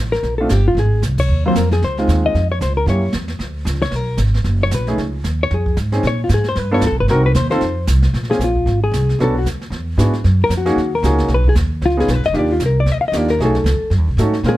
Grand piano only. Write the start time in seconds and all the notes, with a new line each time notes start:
0.40 A3 C4 D4 F4
1.46 F#3 A#3 C4 F4
1.98 G#3 C4 D#4 F4
2.88 A#3 C#4 E4 G4
4.88 A3 C#4 D#4 G#4
5.92 C4 C#4 D#4 G#4
6.71 B3 D4 F4 A4
7.10 C4 D#4 F#4 A#4
7.51 C4 D#4 F4 A4
8.30 A#3 C4 C#4 F4 G#4
9.20 B3 C#4 D4 F#4 A4
9.98 B3 D4 E4 F#4 G#4
10.66 A#3 C#4 D#4 F#4 G#4
11.04 A#3 C#4 D#4 F#4 G#4
11.97 B3 C#4 D#4 F4 G#4
12.34 A#3 D4 D#4 F4 G4
13.14 A#3 D4 D#4 F4 G4
13.40 A3 C#4 D#4 F#4 G#4
14.19 A3 C#4 D#4 F#4 A4
14.45 G#3 C4 C#4 F4 A#4